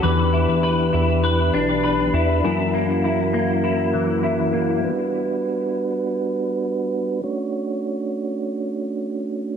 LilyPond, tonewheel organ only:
<<
  \new Staff \with { instrumentName = "Tonewheel organ" } { \time 4/4 \key d \major \tempo 4 = 100 << { <b d' b'>1 | <ais cis' ais'>1 | <b d' b'>1 | <a cis' d' fis' cis''>1 | } \\ { g'1 | fis'1~ | fis'1 | r1 | } >> }
  \new Staff \with { instrumentName = "Tonewheel organ" } { \clef bass \time 4/4 \key d \major e1~ | e1 | g1 | r1 | }
>>